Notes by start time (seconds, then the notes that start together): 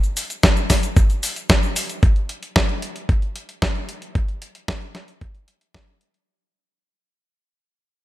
0.04 closed hi-hat, cabasa
0.17 open hi-hat, cabasa
0.30 closed hi-hat, cabasa
0.43 kick, snare, closed hi-hat, cabasa
0.57 closed hi-hat, cabasa
0.70 kick, snare, open hi-hat, cabasa
0.83 closed hi-hat, cabasa
0.97 kick, closed hi-hat, cabasa
1.10 closed hi-hat, cabasa
1.23 open hi-hat, cabasa
1.36 closed hi-hat, cabasa
1.50 kick, snare, closed hi-hat, cabasa
1.63 closed hi-hat, cabasa
1.76 open hi-hat, cabasa
1.89 closed hi-hat, cabasa
2.03 kick, closed hi-hat
2.16 closed hi-hat
2.29 closed hi-hat
2.43 closed hi-hat
2.56 kick, snare, closed hi-hat
2.69 closed hi-hat
2.82 closed hi-hat
2.96 closed hi-hat
3.09 kick, closed hi-hat
3.22 closed hi-hat
3.36 closed hi-hat
3.49 closed hi-hat
3.62 kick, snare, closed hi-hat
3.75 closed hi-hat
3.89 closed hi-hat
4.02 closed hi-hat
4.15 kick, closed hi-hat
4.28 closed hi-hat
4.42 closed hi-hat
4.55 closed hi-hat
4.68 kick, snare, closed hi-hat
4.82 closed hi-hat
4.95 snare, closed hi-hat
5.08 closed hi-hat
5.21 kick, closed hi-hat
5.35 closed hi-hat
5.48 closed hi-hat
5.61 closed hi-hat
5.74 kick, snare, closed hi-hat
6.01 closed hi-hat
6.14 closed hi-hat